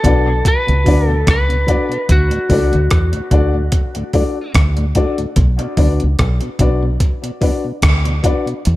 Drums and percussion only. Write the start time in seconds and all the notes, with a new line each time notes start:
0.04 kick, closed hi-hat
0.45 kick, closed hi-hat
0.68 closed hi-hat
0.86 kick, open hi-hat
1.27 kick, cross-stick, closed hi-hat
1.50 closed hi-hat
1.68 kick, closed hi-hat
1.92 closed hi-hat
2.09 kick, closed hi-hat
2.31 closed hi-hat
2.50 kick, open hi-hat
2.73 closed hi-hat
2.90 kick, cross-stick, closed hi-hat
3.13 closed hi-hat
3.31 kick, closed hi-hat
3.72 kick, closed hi-hat
3.95 closed hi-hat
4.13 kick, open hi-hat
4.54 kick, cross-stick, closed hi-hat
4.77 closed hi-hat
4.95 kick, closed hi-hat
5.18 closed hi-hat
5.36 kick, closed hi-hat
5.59 closed hi-hat
5.77 kick, open hi-hat
6.00 closed hi-hat
6.19 kick, cross-stick, closed hi-hat
6.41 closed hi-hat
6.59 kick, closed hi-hat
7.00 kick, closed hi-hat
7.24 closed hi-hat
7.42 kick, open hi-hat
7.82 kick, cross-stick, closed hi-hat
8.05 closed hi-hat
8.24 kick, closed hi-hat
8.47 closed hi-hat
8.65 closed hi-hat